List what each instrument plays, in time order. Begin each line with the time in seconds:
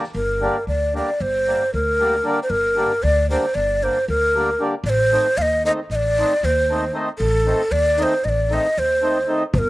0.03 snare
0.15 upright bass G1, ney A#4
0.41 accordion D3 G3 A#3 D4
0.67 upright bass D2, ney D5
0.94 accordion D3 G3 A#3 D4, ney D5
1.20 upright bass G1, ney C5
1.46 accordion D3 G3 A#3 D4
1.74 upright bass D2, ney A#4
1.99 accordion D3 G3 A#3 D4
2.24 accordion D3 G3 A#3 D4
2.43 ney C5
2.50 upright bass G1, ney A#4
2.76 accordion D3 G3 A#3 D4
3.03 upright bass D2, ney D5
3.30 accordion D3 G3 A#3 D4, ney C5
3.55 upright bass G1, ney D5
3.82 accordion D3 G3 A#3 D4, ney C5
4.08 upright bass D2, ney A#4
4.34 accordion D3 G3 A#3 D4
4.59 accordion D3 G3 A#3 D4
4.84 upright bass A1, ney D5
4.89 ney C5
5.12 accordion D#3 A3 C4 D#4
5.37 upright bass D#2, ney F5
5.42 ney D#5
5.64 accordion D#3 A3 C4 D#4, ney D#5
5.90 upright bass A1, ney D#5
5.95 ney D5
6.18 accordion D#3 A3 C4 D#4
6.43 upright bass D#2, ney C5
6.70 accordion D#3 A3 C4 D#4
6.93 accordion D#3 A3 C4 D#4
7.18 upright bass A1, ney A4
7.46 accordion D#3 A3 C4 D#4
7.71 upright bass D#2, ney D5
7.97 accordion D#3 A3 C4 D#4, ney D5
8.03 ney C5
8.24 upright bass A1, ney D#5
8.29 ney D5
8.50 accordion D#3 A3 C4 D#4, ney D#5
8.77 upright bass D#2, ney C5
9.02 accordion D#3 A3 C4 D#4
9.27 accordion D#3 A3 C4 D#4
9.53 upright bass G1, ney C5, kick
9.58 ney A#4